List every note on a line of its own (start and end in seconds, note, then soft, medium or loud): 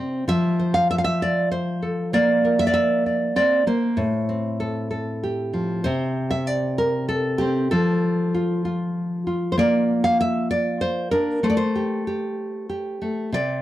0.00 0.29 C3 medium
0.00 0.24 C4 medium
0.00 0.29 C5 medium
0.00 0.28 D5 medium
0.28 3.36 F3 medium
0.28 0.74 E5 loud
0.59 1.21 C5 soft
0.74 0.90 F5 loud
0.91 0.97 E5 medium
0.98 1.04 F5 medium
1.04 1.83 E5 loud
1.22 1.51 D5 medium
1.52 2.13 C5 medium
1.82 2.10 A4 medium
2.13 3.66 A#3 medium
2.13 2.66 D5 loud
2.45 3.94 A#4 soft
2.59 2.72 E5 loud
2.67 3.05 D5 medium
2.74 3.98 E5 loud
3.06 3.35 D5 soft
3.36 3.66 C4 medium
3.36 3.67 D5 loud
3.67 3.98 A#3 medium
3.67 5.23 C5 medium
3.97 5.81 A2 medium
4.29 5.82 C4 soft
4.60 4.89 A4 soft
4.91 5.82 A4 soft
5.23 5.82 G4 soft
5.53 5.85 F3 medium
5.84 7.73 C3 medium
5.84 6.78 C5 loud
6.31 6.47 E5 loud
6.47 7.38 D5 loud
6.78 7.08 A#4 medium
7.09 7.70 A4 medium
7.38 7.69 C4 medium
7.38 7.71 G4 medium
7.71 11.12 F3 medium
7.71 9.57 A4 medium
8.34 8.65 F4 soft
8.65 9.26 F4 soft
9.27 10.24 F4 medium
9.52 9.58 C5 medium
9.58 11.40 A#3 medium
9.58 10.04 D5 loud
10.04 10.20 F5 loud
10.21 10.50 E5 loud
10.51 11.43 D5 loud
10.81 11.11 C5 loud
11.11 11.40 D4 medium
11.11 11.43 A#4 medium
11.43 13.00 A3 medium
11.43 11.49 C5 medium
11.50 11.56 D5 medium
11.57 13.32 C5 medium
11.75 12.07 G4 soft
12.07 12.69 G4 medium
12.69 13.62 G4 soft
13.02 13.29 A3 medium
13.32 13.62 C3 medium
13.32 13.62 D5 loud